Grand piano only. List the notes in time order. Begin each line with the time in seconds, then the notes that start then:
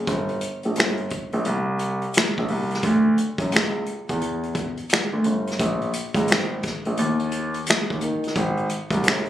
0.08 G1
0.65 A#1
0.77 G1
1.33 A#1
1.46 C2
2.39 A#1
2.50 C2
2.84 D2
3.39 F#2
3.52 C#2
4.10 E2
5.13 D2
5.26 G1
5.60 A#1
6.15 C#2
6.30 G#1
6.86 A#1
6.99 D#2
7.68 D#2
7.91 D#2
8.03 D#3
8.36 G#1
8.91 C2
9.07 G1